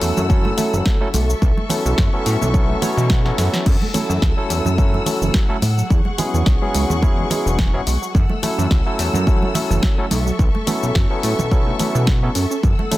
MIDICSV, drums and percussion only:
0, 0, Header, 1, 2, 480
1, 0, Start_track
1, 0, Tempo, 560748
1, 1216, Time_signature, 4, 2, 24, 8
1, 11107, End_track
2, 0, Start_track
2, 0, Title_t, "Drums"
2, 13, Note_on_c, 9, 46, 98
2, 18, Note_on_c, 9, 69, 78
2, 98, Note_off_c, 9, 46, 0
2, 103, Note_off_c, 9, 69, 0
2, 146, Note_on_c, 9, 63, 88
2, 149, Note_on_c, 9, 64, 85
2, 149, Note_on_c, 9, 69, 44
2, 232, Note_off_c, 9, 63, 0
2, 234, Note_off_c, 9, 69, 0
2, 235, Note_off_c, 9, 64, 0
2, 255, Note_on_c, 9, 36, 114
2, 258, Note_on_c, 9, 69, 34
2, 341, Note_off_c, 9, 36, 0
2, 344, Note_off_c, 9, 69, 0
2, 384, Note_on_c, 9, 63, 84
2, 470, Note_off_c, 9, 63, 0
2, 493, Note_on_c, 9, 46, 97
2, 498, Note_on_c, 9, 64, 80
2, 498, Note_on_c, 9, 69, 81
2, 579, Note_off_c, 9, 46, 0
2, 583, Note_off_c, 9, 64, 0
2, 584, Note_off_c, 9, 69, 0
2, 630, Note_on_c, 9, 69, 47
2, 716, Note_off_c, 9, 69, 0
2, 733, Note_on_c, 9, 38, 112
2, 735, Note_on_c, 9, 36, 113
2, 739, Note_on_c, 9, 69, 33
2, 818, Note_off_c, 9, 38, 0
2, 821, Note_off_c, 9, 36, 0
2, 825, Note_off_c, 9, 69, 0
2, 974, Note_on_c, 9, 46, 97
2, 978, Note_on_c, 9, 63, 92
2, 979, Note_on_c, 9, 69, 86
2, 1060, Note_off_c, 9, 46, 0
2, 1063, Note_off_c, 9, 63, 0
2, 1065, Note_off_c, 9, 69, 0
2, 1112, Note_on_c, 9, 69, 46
2, 1197, Note_off_c, 9, 69, 0
2, 1216, Note_on_c, 9, 36, 115
2, 1219, Note_on_c, 9, 69, 34
2, 1301, Note_off_c, 9, 36, 0
2, 1305, Note_off_c, 9, 69, 0
2, 1348, Note_on_c, 9, 63, 78
2, 1434, Note_off_c, 9, 63, 0
2, 1451, Note_on_c, 9, 64, 101
2, 1456, Note_on_c, 9, 46, 103
2, 1461, Note_on_c, 9, 69, 84
2, 1536, Note_off_c, 9, 64, 0
2, 1542, Note_off_c, 9, 46, 0
2, 1547, Note_off_c, 9, 69, 0
2, 1592, Note_on_c, 9, 69, 49
2, 1677, Note_off_c, 9, 69, 0
2, 1694, Note_on_c, 9, 38, 125
2, 1695, Note_on_c, 9, 36, 116
2, 1700, Note_on_c, 9, 69, 35
2, 1779, Note_off_c, 9, 38, 0
2, 1781, Note_off_c, 9, 36, 0
2, 1786, Note_off_c, 9, 69, 0
2, 1935, Note_on_c, 9, 46, 104
2, 1940, Note_on_c, 9, 69, 85
2, 2021, Note_off_c, 9, 46, 0
2, 2025, Note_off_c, 9, 69, 0
2, 2069, Note_on_c, 9, 64, 73
2, 2073, Note_on_c, 9, 69, 45
2, 2074, Note_on_c, 9, 63, 87
2, 2155, Note_off_c, 9, 64, 0
2, 2158, Note_off_c, 9, 69, 0
2, 2160, Note_off_c, 9, 63, 0
2, 2175, Note_on_c, 9, 36, 117
2, 2180, Note_on_c, 9, 69, 36
2, 2261, Note_off_c, 9, 36, 0
2, 2265, Note_off_c, 9, 69, 0
2, 2414, Note_on_c, 9, 64, 97
2, 2415, Note_on_c, 9, 46, 102
2, 2420, Note_on_c, 9, 69, 84
2, 2500, Note_off_c, 9, 64, 0
2, 2501, Note_off_c, 9, 46, 0
2, 2505, Note_off_c, 9, 69, 0
2, 2551, Note_on_c, 9, 69, 50
2, 2637, Note_off_c, 9, 69, 0
2, 2651, Note_on_c, 9, 38, 112
2, 2655, Note_on_c, 9, 36, 114
2, 2658, Note_on_c, 9, 69, 34
2, 2737, Note_off_c, 9, 38, 0
2, 2741, Note_off_c, 9, 36, 0
2, 2744, Note_off_c, 9, 69, 0
2, 2787, Note_on_c, 9, 38, 55
2, 2873, Note_off_c, 9, 38, 0
2, 2895, Note_on_c, 9, 38, 79
2, 2895, Note_on_c, 9, 46, 102
2, 2900, Note_on_c, 9, 69, 82
2, 2981, Note_off_c, 9, 38, 0
2, 2981, Note_off_c, 9, 46, 0
2, 2986, Note_off_c, 9, 69, 0
2, 3027, Note_on_c, 9, 38, 81
2, 3031, Note_on_c, 9, 69, 47
2, 3112, Note_off_c, 9, 38, 0
2, 3117, Note_off_c, 9, 69, 0
2, 3134, Note_on_c, 9, 49, 76
2, 3135, Note_on_c, 9, 36, 120
2, 3139, Note_on_c, 9, 69, 35
2, 3220, Note_off_c, 9, 36, 0
2, 3220, Note_off_c, 9, 49, 0
2, 3225, Note_off_c, 9, 69, 0
2, 3267, Note_on_c, 9, 63, 90
2, 3353, Note_off_c, 9, 63, 0
2, 3375, Note_on_c, 9, 46, 109
2, 3378, Note_on_c, 9, 64, 91
2, 3380, Note_on_c, 9, 69, 80
2, 3461, Note_off_c, 9, 46, 0
2, 3464, Note_off_c, 9, 64, 0
2, 3465, Note_off_c, 9, 69, 0
2, 3512, Note_on_c, 9, 69, 47
2, 3597, Note_off_c, 9, 69, 0
2, 3614, Note_on_c, 9, 36, 121
2, 3614, Note_on_c, 9, 38, 127
2, 3621, Note_on_c, 9, 69, 34
2, 3700, Note_off_c, 9, 36, 0
2, 3700, Note_off_c, 9, 38, 0
2, 3707, Note_off_c, 9, 69, 0
2, 3854, Note_on_c, 9, 46, 110
2, 3859, Note_on_c, 9, 69, 80
2, 3940, Note_off_c, 9, 46, 0
2, 3945, Note_off_c, 9, 69, 0
2, 3978, Note_on_c, 9, 63, 88
2, 3987, Note_on_c, 9, 64, 89
2, 3990, Note_on_c, 9, 69, 45
2, 4064, Note_off_c, 9, 63, 0
2, 4072, Note_off_c, 9, 64, 0
2, 4075, Note_off_c, 9, 69, 0
2, 4094, Note_on_c, 9, 36, 112
2, 4099, Note_on_c, 9, 69, 35
2, 4180, Note_off_c, 9, 36, 0
2, 4184, Note_off_c, 9, 69, 0
2, 4230, Note_on_c, 9, 63, 78
2, 4315, Note_off_c, 9, 63, 0
2, 4331, Note_on_c, 9, 64, 91
2, 4335, Note_on_c, 9, 46, 104
2, 4340, Note_on_c, 9, 69, 81
2, 4417, Note_off_c, 9, 64, 0
2, 4421, Note_off_c, 9, 46, 0
2, 4426, Note_off_c, 9, 69, 0
2, 4470, Note_on_c, 9, 69, 47
2, 4556, Note_off_c, 9, 69, 0
2, 4571, Note_on_c, 9, 38, 125
2, 4574, Note_on_c, 9, 36, 120
2, 4578, Note_on_c, 9, 69, 34
2, 4656, Note_off_c, 9, 38, 0
2, 4660, Note_off_c, 9, 36, 0
2, 4663, Note_off_c, 9, 69, 0
2, 4811, Note_on_c, 9, 63, 89
2, 4814, Note_on_c, 9, 46, 105
2, 4818, Note_on_c, 9, 69, 80
2, 4896, Note_off_c, 9, 63, 0
2, 4899, Note_off_c, 9, 46, 0
2, 4904, Note_off_c, 9, 69, 0
2, 4949, Note_on_c, 9, 69, 47
2, 5035, Note_off_c, 9, 69, 0
2, 5054, Note_on_c, 9, 36, 119
2, 5058, Note_on_c, 9, 69, 33
2, 5140, Note_off_c, 9, 36, 0
2, 5144, Note_off_c, 9, 69, 0
2, 5179, Note_on_c, 9, 63, 88
2, 5265, Note_off_c, 9, 63, 0
2, 5293, Note_on_c, 9, 46, 112
2, 5297, Note_on_c, 9, 64, 95
2, 5298, Note_on_c, 9, 69, 80
2, 5379, Note_off_c, 9, 46, 0
2, 5383, Note_off_c, 9, 64, 0
2, 5384, Note_off_c, 9, 69, 0
2, 5430, Note_on_c, 9, 69, 46
2, 5516, Note_off_c, 9, 69, 0
2, 5531, Note_on_c, 9, 38, 127
2, 5534, Note_on_c, 9, 36, 126
2, 5538, Note_on_c, 9, 69, 35
2, 5617, Note_off_c, 9, 38, 0
2, 5619, Note_off_c, 9, 36, 0
2, 5624, Note_off_c, 9, 69, 0
2, 5774, Note_on_c, 9, 46, 111
2, 5779, Note_on_c, 9, 69, 78
2, 5859, Note_off_c, 9, 46, 0
2, 5864, Note_off_c, 9, 69, 0
2, 5905, Note_on_c, 9, 63, 88
2, 5906, Note_on_c, 9, 64, 86
2, 5912, Note_on_c, 9, 69, 43
2, 5991, Note_off_c, 9, 63, 0
2, 5991, Note_off_c, 9, 64, 0
2, 5998, Note_off_c, 9, 69, 0
2, 6014, Note_on_c, 9, 36, 125
2, 6023, Note_on_c, 9, 69, 33
2, 6099, Note_off_c, 9, 36, 0
2, 6109, Note_off_c, 9, 69, 0
2, 6252, Note_on_c, 9, 64, 100
2, 6256, Note_on_c, 9, 46, 107
2, 6261, Note_on_c, 9, 69, 82
2, 6338, Note_off_c, 9, 64, 0
2, 6342, Note_off_c, 9, 46, 0
2, 6347, Note_off_c, 9, 69, 0
2, 6393, Note_on_c, 9, 69, 46
2, 6479, Note_off_c, 9, 69, 0
2, 6494, Note_on_c, 9, 36, 126
2, 6494, Note_on_c, 9, 38, 127
2, 6501, Note_on_c, 9, 69, 32
2, 6580, Note_off_c, 9, 36, 0
2, 6580, Note_off_c, 9, 38, 0
2, 6587, Note_off_c, 9, 69, 0
2, 6736, Note_on_c, 9, 46, 109
2, 6740, Note_on_c, 9, 69, 80
2, 6821, Note_off_c, 9, 46, 0
2, 6826, Note_off_c, 9, 69, 0
2, 6873, Note_on_c, 9, 69, 45
2, 6959, Note_off_c, 9, 69, 0
2, 6975, Note_on_c, 9, 36, 122
2, 6981, Note_on_c, 9, 69, 34
2, 7060, Note_off_c, 9, 36, 0
2, 7067, Note_off_c, 9, 69, 0
2, 7100, Note_on_c, 9, 63, 88
2, 7186, Note_off_c, 9, 63, 0
2, 7216, Note_on_c, 9, 46, 109
2, 7217, Note_on_c, 9, 64, 86
2, 7221, Note_on_c, 9, 69, 78
2, 7302, Note_off_c, 9, 46, 0
2, 7302, Note_off_c, 9, 64, 0
2, 7306, Note_off_c, 9, 69, 0
2, 7353, Note_on_c, 9, 69, 44
2, 7439, Note_off_c, 9, 69, 0
2, 7455, Note_on_c, 9, 36, 125
2, 7455, Note_on_c, 9, 38, 120
2, 7462, Note_on_c, 9, 69, 34
2, 7540, Note_off_c, 9, 36, 0
2, 7540, Note_off_c, 9, 38, 0
2, 7547, Note_off_c, 9, 69, 0
2, 7696, Note_on_c, 9, 46, 108
2, 7701, Note_on_c, 9, 69, 77
2, 7782, Note_off_c, 9, 46, 0
2, 7786, Note_off_c, 9, 69, 0
2, 7818, Note_on_c, 9, 63, 97
2, 7827, Note_on_c, 9, 64, 73
2, 7833, Note_on_c, 9, 69, 44
2, 7904, Note_off_c, 9, 63, 0
2, 7913, Note_off_c, 9, 64, 0
2, 7919, Note_off_c, 9, 69, 0
2, 7935, Note_on_c, 9, 36, 126
2, 7942, Note_on_c, 9, 69, 32
2, 8021, Note_off_c, 9, 36, 0
2, 8027, Note_off_c, 9, 69, 0
2, 8067, Note_on_c, 9, 63, 89
2, 8152, Note_off_c, 9, 63, 0
2, 8172, Note_on_c, 9, 64, 101
2, 8176, Note_on_c, 9, 46, 108
2, 8181, Note_on_c, 9, 69, 74
2, 8258, Note_off_c, 9, 64, 0
2, 8262, Note_off_c, 9, 46, 0
2, 8267, Note_off_c, 9, 69, 0
2, 8312, Note_on_c, 9, 69, 44
2, 8398, Note_off_c, 9, 69, 0
2, 8412, Note_on_c, 9, 38, 119
2, 8415, Note_on_c, 9, 36, 121
2, 8419, Note_on_c, 9, 69, 32
2, 8498, Note_off_c, 9, 38, 0
2, 8501, Note_off_c, 9, 36, 0
2, 8505, Note_off_c, 9, 69, 0
2, 8652, Note_on_c, 9, 63, 101
2, 8655, Note_on_c, 9, 46, 115
2, 8660, Note_on_c, 9, 69, 81
2, 8738, Note_off_c, 9, 63, 0
2, 8741, Note_off_c, 9, 46, 0
2, 8745, Note_off_c, 9, 69, 0
2, 8791, Note_on_c, 9, 69, 44
2, 8877, Note_off_c, 9, 69, 0
2, 8896, Note_on_c, 9, 36, 118
2, 8901, Note_on_c, 9, 69, 33
2, 8981, Note_off_c, 9, 36, 0
2, 8987, Note_off_c, 9, 69, 0
2, 9028, Note_on_c, 9, 63, 83
2, 9114, Note_off_c, 9, 63, 0
2, 9135, Note_on_c, 9, 46, 110
2, 9136, Note_on_c, 9, 64, 88
2, 9139, Note_on_c, 9, 69, 77
2, 9220, Note_off_c, 9, 46, 0
2, 9222, Note_off_c, 9, 64, 0
2, 9225, Note_off_c, 9, 69, 0
2, 9272, Note_on_c, 9, 69, 45
2, 9357, Note_off_c, 9, 69, 0
2, 9374, Note_on_c, 9, 38, 120
2, 9376, Note_on_c, 9, 36, 118
2, 9381, Note_on_c, 9, 69, 33
2, 9460, Note_off_c, 9, 38, 0
2, 9461, Note_off_c, 9, 36, 0
2, 9467, Note_off_c, 9, 69, 0
2, 9616, Note_on_c, 9, 46, 109
2, 9621, Note_on_c, 9, 69, 77
2, 9702, Note_off_c, 9, 46, 0
2, 9706, Note_off_c, 9, 69, 0
2, 9748, Note_on_c, 9, 63, 99
2, 9752, Note_on_c, 9, 64, 89
2, 9753, Note_on_c, 9, 69, 42
2, 9833, Note_off_c, 9, 63, 0
2, 9837, Note_off_c, 9, 64, 0
2, 9839, Note_off_c, 9, 69, 0
2, 9856, Note_on_c, 9, 36, 124
2, 9862, Note_on_c, 9, 69, 31
2, 9942, Note_off_c, 9, 36, 0
2, 9947, Note_off_c, 9, 69, 0
2, 10096, Note_on_c, 9, 46, 108
2, 10101, Note_on_c, 9, 64, 88
2, 10101, Note_on_c, 9, 69, 74
2, 10182, Note_off_c, 9, 46, 0
2, 10186, Note_off_c, 9, 69, 0
2, 10187, Note_off_c, 9, 64, 0
2, 10232, Note_on_c, 9, 69, 43
2, 10317, Note_off_c, 9, 69, 0
2, 10333, Note_on_c, 9, 38, 117
2, 10336, Note_on_c, 9, 36, 123
2, 10340, Note_on_c, 9, 69, 30
2, 10419, Note_off_c, 9, 38, 0
2, 10422, Note_off_c, 9, 36, 0
2, 10426, Note_off_c, 9, 69, 0
2, 10573, Note_on_c, 9, 46, 111
2, 10578, Note_on_c, 9, 69, 77
2, 10659, Note_off_c, 9, 46, 0
2, 10663, Note_off_c, 9, 69, 0
2, 10711, Note_on_c, 9, 69, 44
2, 10797, Note_off_c, 9, 69, 0
2, 10815, Note_on_c, 9, 36, 121
2, 10819, Note_on_c, 9, 69, 31
2, 10901, Note_off_c, 9, 36, 0
2, 10905, Note_off_c, 9, 69, 0
2, 10949, Note_on_c, 9, 63, 81
2, 11035, Note_off_c, 9, 63, 0
2, 11055, Note_on_c, 9, 46, 108
2, 11060, Note_on_c, 9, 64, 82
2, 11060, Note_on_c, 9, 69, 78
2, 11107, Note_off_c, 9, 46, 0
2, 11107, Note_off_c, 9, 64, 0
2, 11107, Note_off_c, 9, 69, 0
2, 11107, End_track
0, 0, End_of_file